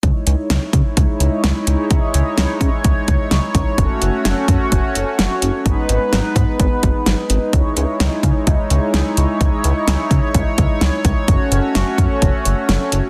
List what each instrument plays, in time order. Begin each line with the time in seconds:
0.03 analog synth bass C#2, analog synth pad G#3 D#4 E4 C#5, kick, closed hi-hat
0.27 analog synth bass C#2, closed hi-hat
0.50 analog synth bass C#2, snare, closed hi-hat
0.73 analog synth bass C#3, kick, closed hi-hat
0.97 analog synth bass C#2, kick, closed hi-hat
1.20 analog synth bass C#2, closed hi-hat
1.44 analog synth bass C#2, snare, closed hi-hat
1.67 analog synth bass C#2, closed hi-hat
1.91 analog synth bass C#2, kick, closed hi-hat
2.14 analog synth bass C#2, closed hi-hat
2.38 analog synth bass C#2, snare, closed hi-hat
2.61 analog synth bass C#3, kick, closed hi-hat
2.84 analog synth bass C#2, kick, closed hi-hat
3.08 analog synth bass C#2, kick, closed hi-hat
3.31 analog synth bass C#2, snare, closed hi-hat
3.55 analog synth bass C#2, kick, closed hi-hat
3.78 analog synth bass F#1, analog synth pad A3 C#4 F#4, kick, closed hi-hat
4.02 analog synth bass F#1, closed hi-hat
4.25 analog synth bass F#1, snare, closed hi-hat
4.48 analog synth bass F#2, kick, closed hi-hat
4.72 analog synth bass F#1, kick, closed hi-hat
4.95 analog synth bass F#1, closed hi-hat
5.19 analog synth bass F#1, snare, closed hi-hat
5.42 analog synth bass F#1, closed hi-hat
5.66 analog synth bass G#1, analog synth pad G#3 B3 D#4 B4, kick, closed hi-hat
5.89 analog synth bass G#1, closed hi-hat
6.13 analog synth bass G#1, snare, closed hi-hat
6.36 analog synth bass G#2, kick, closed hi-hat
6.60 analog synth bass G#1, kick, closed hi-hat
6.83 analog synth bass G#1, kick, closed hi-hat
7.06 analog synth bass G#1, snare, closed hi-hat
7.30 analog synth bass G#1, closed hi-hat
7.53 analog synth bass C#2, analog synth pad E4 C#5, kick, closed hi-hat
7.77 analog synth bass C#2, closed hi-hat
8.00 analog synth bass C#2, snare, closed hi-hat
8.23 analog synth bass C#3, kick, closed hi-hat
8.47 analog synth bass C#2, kick, closed hi-hat
8.70 analog synth bass C#2, closed hi-hat
8.94 analog synth bass C#2, snare, closed hi-hat
9.17 analog synth bass C#2, closed hi-hat
9.41 analog synth bass C#2, kick, closed hi-hat
9.64 analog synth bass C#2, closed hi-hat
9.88 analog synth bass C#2, snare, closed hi-hat
10.11 analog synth bass C#3, kick, closed hi-hat
10.34 analog synth bass C#2, kick, closed hi-hat
10.58 analog synth bass C#2, kick, closed hi-hat
10.81 analog synth bass C#2, snare, closed hi-hat
11.05 analog synth bass C#2, kick, closed hi-hat
11.28 analog synth bass F#1, analog synth pad A3 C#4 F#4, kick, closed hi-hat
11.52 analog synth bass F#1, closed hi-hat
11.75 analog synth bass F#1, snare, closed hi-hat
11.98 analog synth bass F#2, kick, closed hi-hat
12.22 analog synth bass F#1, kick, closed hi-hat
12.45 analog synth bass F#1, closed hi-hat
12.69 analog synth bass F#1, snare, closed hi-hat
12.92 analog synth bass F#1, closed hi-hat